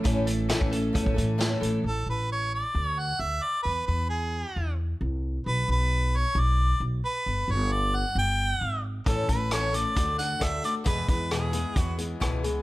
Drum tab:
HH |x-x-x-x-x-x-x-x-|----------------|----------------|----------------|
SD |----o-------o---|----------------|----------------|----------------|
BD |o----o--oo------|----------------|----------------|----------------|

HH |----------------|x-x-x-x-x-x-x-x-|x-x-x-x-x-x-x-x-|
SD |----------------|----r-------r---|----r-------r---|
BD |----------------|o-o-----o---o---|o-o-----o---o---|